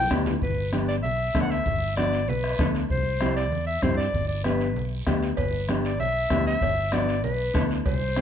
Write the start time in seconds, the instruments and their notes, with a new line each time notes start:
0.11 fingered electric bass D2, clean electric guitar B3 D4 G4, bombo low, bombo rim, cowbell, short guiro
0.26 low conga, low timbale, short guiro
0.42 fingered electric bass G1, clarinet B4, bombo low, high conga, low conga, long guiro
0.73 clean electric guitar B3 D4 G4, bombo rim, high conga, short guiro
0.88 clarinet D5, short guiro
1.03 fingered electric bass B1, clarinet E5, high conga, low conga, long guiro
1.35 fingered electric bass D2, clean electric guitar B3 D4 A4, bombo low, bombo rim, high conga, short guiro
1.42 clarinet F#5
1.51 clarinet E5, short guiro
1.66 fingered electric bass G1, bombo low, high conga, low conga, long guiro
1.97 clean electric guitar B3 D4 F#4, clarinet D5, bombo rim, high conga, short guiro
2.13 short guiro
2.28 fingered electric bass B1, clarinet B4, high conga, low conga, long guiro
2.44 bombo rim
2.59 fingered electric bass D2, clean electric guitar B3 D4 A4, bombo low, bombo rim, high conga, low conga, short guiro
2.75 short guiro
2.90 fingered electric bass C2, clarinet C5, bombo low, high conga, long guiro
3.21 clean electric guitar C4 E4 G4, bombo rim, high conga, short guiro
3.36 clarinet D5, short guiro
3.52 fingered electric bass E2, high conga, low conga, long guiro
3.67 clarinet E5
3.82 fingered electric bass G2, clean electric guitar C4 E4 G4, clarinet C5, bombo low, bombo rim, high conga, low conga, short guiro
3.97 clarinet D5, short guiro
4.13 fingered electric bass G1, bombo low, high conga, low conga, long guiro
4.28 clarinet D5
4.44 clean electric guitar B3 D4 G4, clarinet B4, bombo rim, high conga, short guiro
4.61 short guiro
4.76 fingered electric bass B1, high conga, low conga, long guiro
5.07 fingered electric bass D2, clean electric guitar B3 D4 G4, bombo low, bombo rim, high conga, low conga, short guiro
5.22 short guiro
5.37 fingered electric bass G1, clarinet B4, bombo low, cowbell, high conga, low conga, long guiro
5.68 clean electric guitar B3 D4 G4, bombo rim, cowbell, high conga, short guiro
5.84 clarinet D5, short guiro
5.99 fingered electric bass B1, clarinet E5, cowbell, high conga, low conga, long guiro
6.30 fingered electric bass D2, clean electric guitar B3 D4 G4, bombo low, bombo rim, cowbell, high conga, low timbale, short guiro
6.47 clarinet E5, short guiro
6.61 fingered electric bass G1, bombo low, cowbell, high conga, low conga, long guiro
6.92 clean electric guitar B3 D4 F#4, clarinet D5, bombo rim, cowbell, high conga, short guiro
7.09 short guiro
7.24 fingered electric bass B1, clarinet B4, cowbell, high conga, low conga, long guiro
7.54 fingered electric bass D2, clean electric guitar B3 D4 A4, bombo low, bombo rim, cowbell, high conga, low conga, low timbale, short guiro
7.71 short guiro
7.86 fingered electric bass C2, clarinet C5, bombo low, cowbell, high conga, low conga, long guiro
8.16 clean electric guitar C4 E4 G4, bombo rim, cowbell, high conga, short guiro